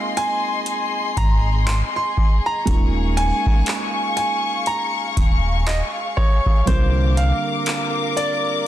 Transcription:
Already playing: felt piano G#3 A#3 C4 D#4 F4, string section G#4 D#5 C6, grand piano F5
0.17 grand piano G#5, closed hi-hat
0.66 closed hi-hat
1.17 sub bass G#1, grand piano A#5, kick, closed hi-hat
1.67 grand piano C6, clap, closed hi-hat
1.96 grand piano C6
2.17 kick
2.46 grand piano A#5
2.65 sub bass D#1, felt piano G#3 A#3 C#4 D#4, string section F5 C#6, kick, closed hi-hat
2.69 felt piano F4
3.17 grand piano G#5, closed hi-hat
3.46 kick
3.66 clap, closed hi-hat
4.17 grand piano G#5, closed hi-hat
4.66 grand piano A#5, closed hi-hat
5.17 sub bass D#1, kick, closed hi-hat
5.67 grand piano D#5, clap, closed hi-hat
6.17 grand piano C#5, kick
6.46 kick
6.65 sub bass C2, felt piano D3 G3 A#3 C4 F4, string section A#4 D6, grand piano C5, kick, closed hi-hat
7.17 grand piano F5, closed hi-hat
7.66 clap, closed hi-hat
8.17 grand piano D5, closed hi-hat

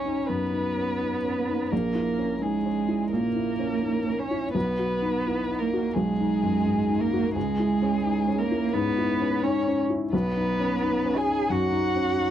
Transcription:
Already playing: felt piano B1 C#4 D#4, cello C#4, violin C#5
0.06 felt piano D#4
0.27 felt piano F#2, cello B3, violin B4
0.53 felt piano D#4
0.77 felt piano C#4
1.00 felt piano D#4
1.24 felt piano C#4
1.49 felt piano D#4
1.71 felt piano A#1, cello A#3, violin A#4
1.95 felt piano E4
2.18 felt piano C#4
2.41 cello G#3, felt piano D#4, violin G#4
2.66 felt piano C#4
2.88 felt piano E4
3.12 felt piano A#2, cello A#3, violin A#4
3.36 felt piano E4
3.59 felt piano C#4
3.83 felt piano D#4
4.06 felt piano C#4
4.19 cello C#4, violin C#5
4.31 felt piano E4
4.54 felt piano B1, cello B3, violin B4
4.79 felt piano F#4
5.02 felt piano D#4
5.27 felt piano E4
5.50 felt piano D#4
5.59 cello A#3, violin A#4
5.73 felt piano F#4
5.94 felt piano B1, cello G#3, violin G#4
6.20 felt piano D#4
6.43 felt piano F#2
6.66 felt piano G#2
6.89 felt piano D#4
7.01 cello A#3, violin A#4
7.13 felt piano F#4
7.34 felt piano C#2, cello G#3, violin G#4
7.59 felt piano E4
7.82 felt piano C#4
8.05 felt piano D#4
8.27 felt piano C#4
8.38 cello A#3, violin A#4
8.51 felt piano E4
8.73 felt piano G#2, cello B3, violin B4
8.98 felt piano E4
9.20 felt piano C#4
9.43 cello C#4, felt piano D#4, violin C#5
9.67 felt piano C#4
9.90 felt piano E4
10.13 felt piano B1, cello B3, violin B4
10.37 felt piano D#4
10.60 felt piano C#4
10.82 felt piano D#4
11.05 felt piano C#4
11.16 cello G#4, violin G#5
11.27 felt piano D#4
11.50 felt piano F#2, cello F#4, violin F#5
11.73 felt piano D#4
11.96 felt piano C#4
12.18 felt piano D#4

